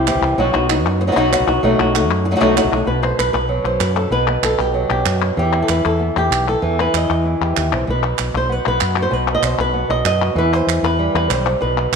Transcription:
0.06 E3 C4 E4 G4, clap
0.15 C2
0.22 C2
0.38 B1 B2 F#3 B3 D#4 F#4
0.53 B1 B3 D#4 F#4, clap
0.69 B3 D#4 F#4, clap
0.86 F#2, clap
1.01 muted nylon-string guitar stroke
1.07 F#3 B3 D#4 F#4
1.12 F#3 B3 D#4 F#4
1.16 B1 B2 F#3 B3 D#4 F#4
1.32 F#3 B3 D#4 F#4, clap
1.40 B1
1.47 B1 B3 D#4 F#4, clap
1.63 B1 B2 F#3 A3 D#4 F#4
1.79 B1 A3 D#4 F#4, clap
1.95 A3 D#4 F#4, clap
2.10 F#2, clap
2.25 muted nylon-string guitar stroke
2.31 F#3 A3 D#4 F#4
2.36 F#3 A3 D#4 F#4
2.40 B1 B2 F#3 A3 D#4 F#4
2.56 F#3 A3 D#4 F#4, clap
2.64 B1
2.72 B1 A3 D#4 F#4
2.86 B1 B2 B4
3.03 C5, clap
3.19 B1 B4, clap
3.33 B1 B4, clap
3.49 F#3
3.64 B1 C5, clap
3.80 F#2 B4, clap
3.96 A4, clap
4.11 B1 B2 B4
4.27 B3, clap
4.43 B1 A4, clap
4.59 B1 G4
4.74 F#3
4.90 B1 G4, clap
5.06 F#2 F#4, clap
5.22 clap
5.37 E2 E3 G4
5.53 E4, clap
5.62 A4
5.69 E2 B4, clap
5.85 E2 A4, clap
6.00 B3
6.16 E2 G4, clap
6.30 B1, clap
6.48 A4, clap
6.62 E2 E3
6.80 B4, clap
6.94 E2 D#5, clap
7.10 E2, clap
7.26 E4
7.41 E2 G4, clap
7.57 D#2 D#3, clap
7.72 B1 C3, clap
7.87 B1 B2 B4
8.03 clap
8.18 B1, clap
8.34 B1 C5, clap
8.49 B3 B4
8.66 B1 B4, clap
8.81 F#2, clap
8.96 F#4, clap
9.02 C5
9.11 B1 B2 B4
9.28 clap
9.35 D#5
9.42 B1 C5, clap
9.58 B1 B4, clap
9.74 B3
9.89 B1 D#5, clap
10.05 F#2 D#5, clap
10.22 F#4, clap
10.35 E2 E3 B4
10.53 C5, clap
10.67 E2, clap
10.83 E2 B4, clap
10.99 G3
11.15 E2 B4, clap
11.30 B1 D#3 C5, clap
11.46 C3
11.61 B1 B2 B4
11.78 B3, clap
11.92 B1

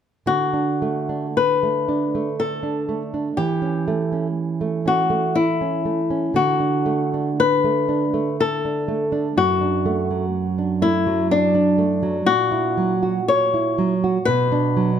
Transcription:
0.26 D3 F#4
0.54 D4
0.82 A3
1.09 D4
1.37 B4
1.63 A3
1.89 D4
2.15 A3
2.40 A4
2.63 D4
2.89 A3
3.14 D4
3.37 E3 G4
3.62 C#4
3.88 A3
4.12 C#4
4.61 A3
4.86 C#4 F#4
5.10 A3
5.35 E4
5.61 C#4
5.85 A3
6.10 C#4
6.34 D3 F#4
6.60 D4
6.86 A3
7.14 D4
7.40 B4
7.64 A3
7.89 D4
8.14 A3
8.40 A4
8.65 D4
8.88 A3
9.12 D4
9.37 F#2 F#4
9.61 D4
9.86 A3
10.11 F#3
10.58 D4
10.82 A3 E4
11.07 F#3
11.31 D4
11.54 D4
11.78 A3
12.03 F#3
12.26 A#2 F#4
12.52 E4
12.77 F#3
13.03 F#4
13.28 C#5
13.54 E4
13.78 F#3
14.04 F#4
14.25 B2 B4
14.52 D4
14.77 F#3

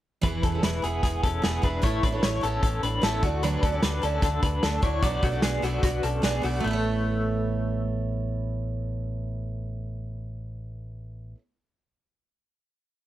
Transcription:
0.21 E1 E3 B3 E4 G#4 B4, kick, closed hi-hat
0.43 E1 C#4 A4, kick, closed hi-hat
0.52 E4 G#4 B4
0.63 E1 E4 B4, snare, closed hi-hat
0.82 E1 B3 E4 G#4 B4, closed hi-hat
1.03 E1 B3 G#4, kick, snare, closed hi-hat
1.23 E1 C#4 A4, kick, closed hi-hat
1.42 E1 B3 E4 G#4 B4, snare, closed hi-hat
1.62 E1 B3 D4 E4 G#4 B4, kick, closed hi-hat
1.82 A1 A3 B3 E4 A4 C#5, kick, closed hi-hat
2.03 A1 D4 B4, kick, closed hi-hat
2.12 E4 A4 C#5
2.23 A1 E4 C#5, snare, closed hi-hat
2.41 A1 B3 C#4 E4 A4 C#5, closed hi-hat
2.63 A1 C#4 A4, kick, closed hi-hat
2.83 A1 D4 B4, closed hi-hat
3.01 A1 B3 C#4 E4 A4 C#5, snare, closed hi-hat
3.23 D2 A3 D4 F#4 D5, kick, closed hi-hat
3.43 D3 F#3 A3 D4 F#4 B4 D5, closed hi-hat
3.63 D2 C#4 A4, kick, closed hi-hat
3.72 A3 D4 F#4 D5
3.83 D2 D4 B4, snare, closed hi-hat
4.02 D2 A3 C#4 D4 F#4 A4 D5, closed hi-hat
4.22 D2 D4 A4, kick, snare, closed hi-hat
4.43 D2 D4 B4, kick, closed hi-hat
4.63 D2 A3 D4 F#4 A4 D5, snare, closed hi-hat
4.82 D2 A3 D4 E4 F#4 C#5 D5, kick, closed hi-hat
5.02 B1 B2 F#3 B3 D4 F#4 D5, kick, closed hi-hat
5.23 B1 A3 F#4, kick, closed hi-hat
5.32 B3 D4 F#4 D5
5.42 B1 B3 G#4, snare, closed hi-hat
5.62 B1 A3 B3 D4 F#4 D5, closed hi-hat
5.83 B1 B3 F#4, kick, snare, closed hi-hat
6.03 B1 C#4 A4, closed hi-hat
6.22 B1 B3 D4 F#4 G#4 D5, snare, closed hi-hat
6.42 B1 A3 B3 D4 F#4 D5, open hi-hat
6.60 A3
6.64 A1 B3 E4
6.71 A4 C#5

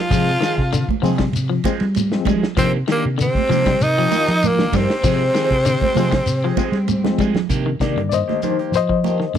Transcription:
Already playing: F3 F4 F5
0.10 C3 F3 G#3 C4 G#4, kick, ride bell, shekere
0.41 D#3 F3 G#3 C4 G#4, snare, ride bell, shekere
0.58 C3, kick
0.72 D3, snare, ride bell, high conga, shekere
0.89 kick, high conga
1.02 C3 F3 G#3 C4 G#4, muted clean electric guitar stroke, open hi-hat, low conga, shekere
1.18 G3, kick, snare, ride bell
1.32 C3, ride bell, high conga, shekere
1.49 F3
1.64 F3 G#3 C4, kick, ride bell, high conga, shekere
1.80 G3, snare, ride bell
1.95 G#3 C4, ride bell, high conga, shekere
2.12 F3 G#3 C4, snare
2.25 F3 G3 G#3 G#4, kick, ride bell, high conga, low conga, shekere
2.43 snare
2.57 C3 D#3 F3 A#3 C4 D4 G4 C5, kick, ride bell, shekere
2.87 A#2 D#3 A#3 D4 G4, snare, ride bell, shekere
2.91 A#3 A#4
3.05 C3
3.18 C3 D3, ride bell, high conga, shekere
3.22 C4 C5
3.35 kick, high conga
3.49 C3 D#3 F3 A#3 D4 G4, snare, open hi-hat, high conga, low conga, shekere
3.66 G3, kick, snare, ride bell
3.81 C3 D#3 D#4 D#5, ride bell, high conga, shekere
3.98 F3 A#3 D4 G4
4.11 D#3 A#3 D4 F4 G4, snare, ride bell, high conga, shekere
4.28 F3, snare, ride bell
4.43 A#2 A#4, ride bell, high conga, shekere
4.47 A#3
4.59 D#3 A#3 D4, snare, high conga
4.72 G2 C3 D#3 G3 A#3 D4 G4, kick, ride bell, high conga, low conga, shekere
4.76 C4 C5
4.90 snare
5.03 C3 F3 G#3 C4 G#4, kick, ride bell, high conga, shekere
5.35 D#3 F3 G#3 C4 G#4, snare, ride bell, shekere
5.51 C3, kick, snare
5.65 D3, snare, ride bell, high conga, shekere
5.81 kick, high conga
5.95 C3 F3 G#3 C4 G#4, open hi-hat, high conga, low conga, shekere
6.12 muted clean electric guitar stroke, kick, snare, ride bell
6.26 C3, ride bell, high conga, shekere
6.44 F3 G#3 C4 G#4
6.57 F3 G#3 C4 G#4, kick, ride bell, high conga, shekere
6.72 G3, snare, ride bell
6.88 G#3 C4, ride bell, high conga, shekere
7.04 F3 G#3 C4, snare, high conga
7.18 F3 G3 G#3 C4 G#4, kick, ride bell, low conga, shekere
7.34 snare, low conga
7.49 C3 D#3 A#3 D4 G4, kick, closed hi-hat, high conga, shekere
7.66 D#3
7.80 C3 D#3 A#3 D4 G4 D5, kick, snare, closed hi-hat, shekere
7.96 G2 D3, closed hi-hat
8.09 C5 D5, closed hi-hat, high conga, shekere
8.14 D#5
8.28 A#3 D4 G4, snare, high conga
8.42 D#3 A#3 D4 D#4 G4 C5, closed hi-hat, low conga, shekere
8.59 A#3 G4, muted clean electric guitar stroke, closed hi-hat
8.72 F3 C5, closed hi-hat, high conga, shekere
8.77 D#5
8.89 F3, kick
9.04 D#3 A#3 D4 G4, closed hi-hat, high conga, shekere
9.20 D#3, snare
9.34 G2, closed hi-hat, high conga

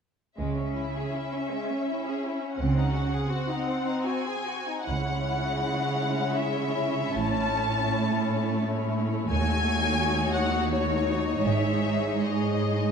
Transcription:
0.38 C#2 C#3 G#3 C#4 E5
0.58 C#4
0.77 E4
0.96 G#4
1.14 E4
1.33 C#4
1.52 G#3
1.70 C#4
1.89 E4
2.07 G#4
2.24 E4
2.41 C#4
2.58 C#2 C#3 C4 F#5
2.75 D#4
2.94 F#4
3.10 G#4
3.29 C4 F#4
3.48 D#4
3.67 C4
3.86 D#4
4.06 F#4 G#5
4.26 G#4
4.47 F#4
4.67 D#4
4.86 C#2 C#3 G#3 C#4 E4 C#5 F#5
6.36 E5
7.16 A1 A2 A3 A5
9.30 D#2 D#4 F#4 C#5 G#5
10.35 F#5
10.70 C#5
11.44 G#1 G#2 G#3 G#4 E5
12.24 D#5

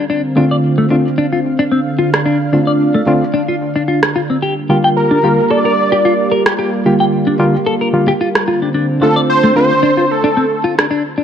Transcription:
Already playing: D3 C4 F5
0.10 D4
0.36 D3 A3 C4 D4 F4
0.51 D5
0.78 A3
0.90 D3 A3 C4 D4 F4
1.18 D4
1.33 F4
1.59 D4
1.72 C4
1.99 D4 F4
2.13 D4, cross-stick
2.26 D4
2.53 D3 A3 C4 D4 F4
2.67 D5
2.94 A3
3.06 D3 A3 C4 D4 F4
3.34 D4
3.48 F4
3.76 D4
3.88 F4
4.03 cross-stick
4.16 F4
4.30 C4
4.42 G3 A#3 F4 G4
4.69 D3 G3 A#3 F4 G4
4.84 G5
4.97 A#4
5.11 D4
5.23 D3 G3 A#3 F4 G4
5.51 A4 D5
5.65 A#4
5.92 G4
6.05 F4
6.32 A#4
6.46 G4, cross-stick
6.59 G4
6.85 D3 G3 A#3 F4 G4
7.00 G5
7.27 D4
7.39 D3 G3 A#3 F4 G4
7.66 A4
7.81 A#4
7.93 D3 G3 A#3 F4
8.08 G4
8.21 F4
8.35 cross-stick
8.48 D3 C4 F4
8.62 D4
8.74 D4
9.01 D3 A3 C4 D4 F4 A4
9.16 D5
9.29 C5
9.43 A3
9.55 D3 A3 C4 D4 F4 C5
9.83 D4
9.97 F4
10.11 A4
10.24 D4
10.37 C4
10.64 F4
10.78 D4, cross-stick
10.91 D4
11.18 D4

